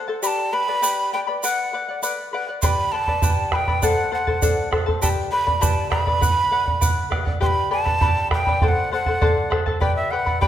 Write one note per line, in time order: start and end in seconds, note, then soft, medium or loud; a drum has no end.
0.08 0.22 A4 medium
0.08 0.22 C5 soft
0.08 0.23 A5 medium
0.22 0.53 G4 medium
0.22 0.51 B4 medium
0.22 0.52 D5 medium
0.22 0.51 G5 medium
0.22 0.52 B5 medium
0.22 0.28 B5 medium
0.22 shaker medium
0.27 0.55 A5 medium
0.52 0.68 B4 medium
0.52 0.67 D5 medium
0.52 0.68 G5 medium
0.52 0.66 B5 medium
0.52 1.13 B5 loud
0.68 0.81 B4 soft
0.68 0.82 D5 soft
0.68 0.82 B5 medium
0.82 1.13 G4 medium
0.82 1.13 B4 medium
0.82 1.13 D5 medium
0.82 1.12 G5 medium
0.82 1.13 B5 medium
0.82 shaker medium
1.13 1.28 B4 medium
1.13 1.27 D5 medium
1.13 1.28 G5 medium
1.13 1.20 G5 medium
1.13 1.26 B5 medium
1.27 1.42 B4 soft
1.27 1.43 D5 medium
1.27 1.43 B5 medium
1.43 1.72 B4 medium
1.43 1.73 D5 medium
1.43 1.99 F#5 medium
1.43 1.73 F#5 medium
1.43 shaker medium
1.73 1.88 B4 medium
1.73 1.89 D5 medium
1.73 1.87 F#5 medium
1.89 2.01 D5 soft
1.89 2.02 F#5 medium
2.03 2.32 B4 medium
2.03 2.33 D5 medium
2.03 2.33 F#5 medium
2.03 shaker medium
2.33 2.48 B4 medium
2.33 2.49 D5 medium
2.33 2.47 F#5 medium
2.48 2.62 D5 soft
2.48 2.62 F#5 medium
2.62 2.93 G4 medium
2.62 2.92 B4 medium
2.62 2.93 D5 medium
2.62 2.92 G5 medium
2.62 2.93 B5 medium
2.62 2.67 C6 medium
2.62 bombo low medium
2.62 shaker medium
2.66 2.93 B5 medium
2.92 3.07 B4 medium
2.92 3.07 D5 medium
2.92 3.08 G5 medium
2.92 3.52 A5 loud
2.92 3.06 B5 medium
3.07 3.21 B4 soft
3.07 3.22 D5 soft
3.07 3.22 B5 soft
3.07 bombo low soft
3.22 3.53 G4 medium
3.22 3.51 B4 medium
3.22 3.52 D5 medium
3.22 3.51 G5 medium
3.22 3.52 B5 medium
3.22 bombo low medium
3.22 shaker medium
3.52 3.68 B4 medium
3.52 3.67 D5 medium
3.52 3.68 G5 medium
3.52 3.86 G5 medium
3.52 3.57 A5 medium
3.52 3.66 B5 medium
3.52 bombo rim medium
3.52 bombo low medium
3.67 3.83 B4 soft
3.67 3.81 D5 medium
3.67 3.83 B5 medium
3.67 bombo low medium
3.82 4.11 A4 medium
3.82 4.11 C5 medium
3.82 4.12 D5 medium
3.82 4.10 F#5 medium
3.82 4.13 F#5 medium
3.82 4.12 A5 medium
3.82 bombo low medium
3.82 shaker medium
4.11 4.26 A4 medium
4.11 4.27 C5 medium
4.11 4.27 F#5 medium
4.11 4.69 F#5 medium
4.11 4.26 A5 medium
4.27 4.41 A4 soft
4.27 4.41 C5 soft
4.27 4.42 A5 medium
4.27 bombo low medium
4.42 4.71 A4 medium
4.42 4.71 C5 medium
4.42 4.71 D5 medium
4.42 4.70 F#5 medium
4.42 4.71 A5 medium
4.42 bombo low medium
4.42 shaker medium
4.71 4.86 A4 medium
4.71 4.87 C5 medium
4.71 4.87 F#5 medium
4.71 4.85 A5 medium
4.71 bombo rim medium
4.71 bombo low medium
4.86 5.02 A4 medium
4.86 5.02 C5 medium
4.86 5.02 A5 medium
4.86 bombo low medium
5.02 5.32 G4 medium
5.02 5.31 B4 medium
5.02 5.31 D5 medium
5.02 5.30 G5 medium
5.02 5.09 A5 medium
5.02 5.32 B5 medium
5.02 bombo low medium
5.02 shaker medium
5.32 5.47 B4 medium
5.32 5.46 D5 medium
5.32 5.47 G5 medium
5.32 5.63 B5 loud
5.32 5.46 B5 medium
5.47 5.61 B4 soft
5.47 5.61 D5 medium
5.47 5.60 B5 medium
5.47 bombo low medium
5.61 5.92 G4 medium
5.61 5.90 B4 medium
5.61 5.91 D5 medium
5.61 5.89 G5 medium
5.61 5.90 A5 loud
5.61 5.91 B5 medium
5.61 bombo low medium
5.61 shaker medium
5.90 6.06 B4 medium
5.90 6.06 D5 medium
5.90 6.06 G5 medium
5.90 7.07 B5 loud
5.90 6.05 B5 medium
5.90 bombo rim medium
5.90 bombo low medium
6.06 6.20 B4 soft
6.06 6.20 D5 medium
6.06 6.22 B5 medium
6.06 bombo low medium
6.21 6.50 B4 medium
6.21 6.51 D5 medium
6.21 6.51 F#5 medium
6.21 bombo low medium
6.21 shaker medium
6.51 6.67 B4 medium
6.51 6.66 D5 medium
6.51 6.65 F#5 medium
6.66 6.80 D5 soft
6.66 6.80 F#5 medium
6.66 bombo low medium
6.81 7.09 B4 medium
6.81 7.10 D5 medium
6.81 7.11 F#5 medium
6.81 bombo low medium
6.81 shaker medium
7.10 7.26 B4 medium
7.10 7.26 D5 medium
7.10 7.24 F#5 medium
7.10 bombo rim medium
7.10 bombo low soft
7.25 7.40 D5 soft
7.25 7.40 F#5 medium
7.25 bombo low medium
7.40 7.71 G4 medium
7.40 7.70 B4 medium
7.40 7.70 D5 medium
7.40 7.69 G5 medium
7.40 7.71 B5 medium
7.40 7.48 C6 medium
7.40 bombo low medium
7.47 7.70 B5 loud
7.71 7.86 B4 medium
7.71 7.85 D5 medium
7.71 7.86 G5 medium
7.71 8.28 A5 medium
7.71 7.84 B5 medium
7.85 8.00 B4 soft
7.85 8.00 D5 soft
7.85 8.01 B5 medium
7.85 bombo low medium
8.01 8.31 G4 medium
8.01 8.30 B4 medium
8.01 8.30 D5 medium
8.01 8.29 G5 medium
8.01 8.31 B5 medium
8.01 bombo low medium
8.30 8.46 B4 medium
8.30 8.47 D5 medium
8.30 8.46 G5 medium
8.30 8.64 G5 medium
8.30 8.46 B5 medium
8.30 bombo rim medium
8.30 bombo low medium
8.47 8.62 B4 soft
8.47 8.60 D5 medium
8.47 8.62 B5 medium
8.47 bombo low medium
8.61 8.91 A4 medium
8.61 8.91 C5 medium
8.61 8.91 D5 medium
8.61 8.90 F#5 medium
8.61 8.69 G5 medium
8.61 8.92 A5 medium
8.61 bombo low medium
8.68 8.92 F#5 medium
8.91 9.06 A4 medium
8.91 9.07 C5 medium
8.91 9.06 F#5 medium
8.91 9.48 F#5 medium
8.91 9.05 A5 medium
9.06 9.20 A4 soft
9.06 9.21 C5 soft
9.06 9.21 A5 medium
9.06 bombo low medium
9.21 9.50 A4 medium
9.21 9.50 C5 medium
9.21 9.51 D5 medium
9.21 9.49 F#5 medium
9.21 9.50 A5 medium
9.21 bombo low medium
9.50 9.66 A4 medium
9.50 9.66 C5 medium
9.50 9.66 F#5 medium
9.50 9.65 A5 medium
9.50 bombo rim soft
9.50 bombo low soft
9.66 9.81 A4 medium
9.66 9.81 C5 soft
9.66 9.81 A5 medium
9.66 bombo low soft
9.80 10.11 G4 medium
9.80 10.11 B4 medium
9.80 10.11 D5 medium
9.80 9.95 G5 medium
9.80 10.10 G5 medium
9.80 10.11 B5 medium
9.80 bombo low medium
9.96 10.12 E5 medium
10.11 10.26 B4 medium
10.11 10.26 D5 medium
10.11 10.40 F#5 medium
10.11 10.26 G5 medium
10.11 10.25 B5 medium
10.26 10.40 B4 soft
10.26 10.41 D5 soft
10.26 10.41 B5 medium
10.26 bombo low soft
10.41 10.48 G4 medium
10.41 10.48 B4 medium
10.41 10.48 D5 medium
10.41 10.47 G5 medium
10.41 10.48 G5 medium
10.41 10.48 B5 medium
10.41 bombo low medium